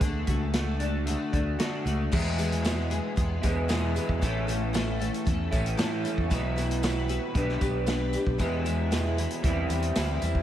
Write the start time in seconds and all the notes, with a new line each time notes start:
0.00 D2 D3 A3 D4 F#4, kick, closed hi-hat
0.27 C#2 A3 D4 F#4, kick, closed hi-hat
0.53 D3 A3 D4 F#4, snare, closed hi-hat
0.80 A3 D4 F#4, closed hi-hat
1.07 D3 A3 D4 F#4, closed hi-hat
1.33 D2 A3 D4 F#4, kick, closed hi-hat
1.59 D3 A3 D4 F#4, snare, closed hi-hat
1.85 C#2 A3 D4 F#4, closed hi-hat
2.12 E2 B2 E3 G#3 B3 E4 G#4, kick, crash, tambourine
2.38 E3 G#3 B3 G#4, closed hi-hat, tambourine
2.52 closed hi-hat
2.64 E2 B2 E3 G#3 B3 G#4, snare, closed hi-hat, tambourine
2.90 E3 G#3 B3 G#4, closed hi-hat
3.16 E2 E3 G#3 B3 G#4, kick, closed hi-hat, tambourine
3.42 E2 B2 E3 G#3 B3 E4 G#4, kick, closed hi-hat, tambourine
3.68 E2 B2 E3 G#3 B3 E4 G#4, snare, closed hi-hat, tambourine
3.95 E3 G#3 B3 G#4, closed hi-hat, tambourine
4.09 E2, kick
4.21 A1 A2 E3 A3 C#4 E4 A4, kick, closed hi-hat, tambourine
4.47 A3 C#4 A4, closed hi-hat, tambourine
4.73 A2 E3 A3 C#4 A4, snare, closed hi-hat, tambourine
4.99 A3 C#4 A4, closed hi-hat
5.14 closed hi-hat
5.25 E2 E3 A3 C#4 A4, kick, closed hi-hat, tambourine
5.51 A1 A2 E3 A3 C#4 E4 A4, kick, closed hi-hat, tambourine
5.66 closed hi-hat
5.77 A2 E3 A3 C#4 E4 A4, snare, closed hi-hat, tambourine
6.04 A3 C#4 A4, closed hi-hat, tambourine
6.18 E2, kick
6.30 B1 B2 E3 B3 E4 F#4 B4, kick, closed hi-hat, tambourine
6.56 B3 E4 F#4 B4, closed hi-hat, tambourine
6.71 closed hi-hat
6.82 B2 E3 B3 E4 F#4 B4, snare, closed hi-hat, tambourine
7.08 B3 E4 F#4 B4, closed hi-hat
7.34 B1 B3 D4 G4 B4, kick, closed hi-hat, tambourine
7.49 snare
7.61 B1 D4 G4 B4, kick, closed hi-hat, tambourine
7.86 B3 D4 G4 B4, snare, closed hi-hat, tambourine
8.13 D4 G4 B4, closed hi-hat, tambourine
8.27 B1, kick
8.38 E2 B2 E3 G#3 B3 E4, kick, closed hi-hat, tambourine
8.65 E3 G#3 B3 E4, closed hi-hat, tambourine
8.91 E2 B2 E3 G#3 B3 E4, snare, closed hi-hat, tambourine
9.17 E3 G#3 B3 E4, closed hi-hat, tambourine
9.30 closed hi-hat
9.43 E2 E3 G3 C4 E4, kick, closed hi-hat, tambourine
9.69 E2 G3 C4 E4, closed hi-hat, tambourine
9.82 closed hi-hat
9.95 D2 E3 G3 C4 E4, snare, closed hi-hat, tambourine
10.21 E2 G3 C4 E4, closed hi-hat, tambourine
10.35 kick